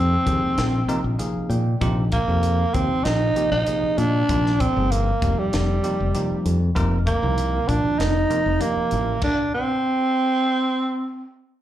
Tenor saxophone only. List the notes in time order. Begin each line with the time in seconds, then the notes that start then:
Already playing: C4
2.13 A#3
2.74 C4
3.05 D#4
3.51 D#4
3.98 D4
4.60 C4
4.91 A#3
5.38 G3
7.06 A#3
7.68 D4
7.99 D#4
8.61 A#3
9.23 D4
9.54 C4